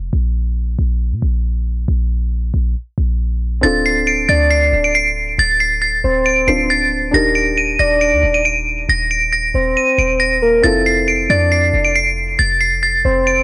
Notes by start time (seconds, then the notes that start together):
Already playing: F1
0.13 A#1
0.79 A#1
1.12 A#2
1.22 A#1
1.88 A#1
2.54 A#1
2.98 A#1
3.61 D1 C4 D4 F4 A4 A6
3.86 C7
4.07 D7
4.29 D2 D5 A6
4.51 C7
4.73 D1
4.84 D7
4.95 C7
5.38 D1 A6
5.60 C7
5.82 A6
6.04 D1 C5
6.26 D7
6.47 D1 C4 D4 F4 C5 C7
6.70 A6
7.11 D#1 D4 D#4 G4 A#4 A#6
7.35 D7
7.57 D#7
7.79 D#1 D5 A#6
8.01 D7
8.13 D#2
8.23 D#1
8.34 D#7
8.45 D7
8.89 D#1 A#6
9.11 D7
9.33 A#6
9.54 D#1 C5
9.77 D#7
9.98 D#1 D7
10.20 A#6
10.42 A#4
10.62 F1 C4 E4 F4 A4 A6
10.86 C7
11.08 D7
11.30 F2 D5 A6
11.52 C7
11.74 F1
11.84 D7
11.96 C7
12.39 F1 A6
12.61 C7
12.83 A6
13.05 F1 C5
13.27 D7